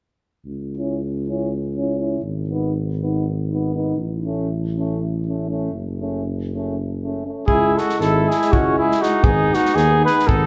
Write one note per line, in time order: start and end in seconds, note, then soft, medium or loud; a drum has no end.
0.46 2.18 C#2 medium
0.77 0.99 C#4 soft
0.77 0.99 E4 soft
1.28 1.51 C#4 soft
1.28 1.51 E4 soft
1.77 1.98 C#4 medium
1.77 1.99 E4 soft
1.99 2.21 C#4 soft
1.99 2.21 E4 medium
2.22 3.93 G#1 medium
2.50 2.73 B3 soft
2.50 2.73 D#4 soft
3.01 3.25 B3 medium
3.01 3.26 D#4 soft
3.52 3.74 B3 soft
3.52 3.74 D#4 soft
3.74 3.96 B3 medium
3.74 3.97 D#4 medium
3.96 5.68 A1 medium
4.25 4.48 A3 medium
4.25 4.48 C#4 medium
4.77 5.01 A3 soft
4.77 5.00 C#4 soft
5.27 5.50 A3 soft
5.27 5.49 C#4 soft
5.50 5.72 A3 soft
5.50 5.72 C#4 medium
5.71 7.31 F#1 medium
6.01 6.24 A3 soft
6.01 6.24 C#4 medium
6.54 6.76 A3 soft
6.54 6.77 C#4 medium
7.04 7.25 A3 soft
7.04 7.25 C#4 soft
7.26 7.48 A3 soft
7.26 7.47 C#4 soft
7.47 7.76 C#2 medium
7.47 9.24 G#3 medium
7.47 9.26 E4 medium
7.47 7.80 E4 medium
7.47 7.78 G#4 medium
7.47 kick medium
7.76 8.00 F#4 medium
7.76 7.98 A4 medium
7.76 snare soft
7.89 snare soft
7.99 8.28 G#1 medium
7.99 8.30 E4 medium
7.99 8.31 A4 medium
7.99 snare soft
8.29 8.54 E4 medium
8.29 8.54 G#4 medium
8.29 snare soft
8.42 snare soft
8.52 8.91 C#2 medium
8.52 8.77 C#4 medium
8.52 8.78 F#4 medium
8.52 kick medium
8.78 9.03 E4 medium
8.78 9.03 G#4 medium
8.92 snare soft
9.02 9.25 D#4 medium
9.02 9.26 F#4 medium
9.02 snare soft
9.22 9.51 G#1 medium
9.22 10.46 B3 medium
9.22 9.54 D#4 medium
9.22 10.46 D#4 medium
9.22 9.56 G#4 medium
9.22 kick loud
9.54 9.75 D#4 medium
9.54 9.77 F#4 medium
9.54 snare soft
9.65 snare soft
9.75 10.04 D#2 medium
9.75 10.04 D#4 medium
9.75 10.04 G#4 medium
9.75 snare soft
10.05 10.30 G#4 medium
10.05 10.29 B4 medium
10.05 snare soft
10.19 snare soft
10.27 10.46 G#1 medium
10.27 10.46 D#4 medium
10.27 10.46 A4 medium
10.27 kick medium